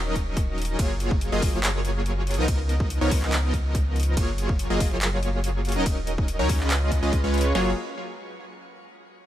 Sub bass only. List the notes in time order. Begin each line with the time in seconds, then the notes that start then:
Already playing: D#1
0.79 F#1
1.32 F#1
1.53 F#1
2.38 C#2
3.01 C#2
3.22 C#2
4.17 F#1
4.70 F#1
4.91 F#1
5.76 D#1
6.39 D#2
6.60 C#2
7.03 C#2
7.24 C#2
7.55 F#1